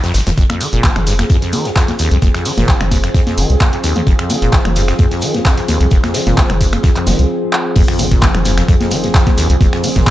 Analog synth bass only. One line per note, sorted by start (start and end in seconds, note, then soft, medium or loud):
0.15 0.22 G#1 medium
0.27 0.33 D#1 medium
0.38 0.45 F1 loud
0.73 0.79 F1 loud
0.84 0.91 G#1 medium
0.96 1.23 F1 medium
1.30 1.37 F2 medium
2.11 2.18 C2 medium
2.22 2.30 F1 medium
2.58 2.64 F1 loud
2.68 2.76 G#1 medium
2.81 3.08 F1 medium
3.38 3.45 F1 medium
3.50 3.56 C2 loud
4.07 4.14 F1 loud
4.42 4.49 F1 loud
4.53 4.60 G#1 medium
4.65 4.92 F1 medium
4.99 5.07 F2 medium
5.81 5.87 C2 medium
5.91 5.99 F1 loud
6.27 6.33 F1 loud
6.38 6.45 G#1 medium
6.50 6.77 F1 medium
7.07 7.14 F1 medium
7.19 7.26 C2 loud
7.76 7.84 F1 loud
8.11 8.18 F1 loud
8.22 8.30 G#1 medium
8.35 8.62 F1 medium
8.69 8.76 F2 medium
9.50 9.56 C2 medium
9.61 9.68 F1 loud
9.96 10.03 F1 loud
10.07 10.10 G#1 medium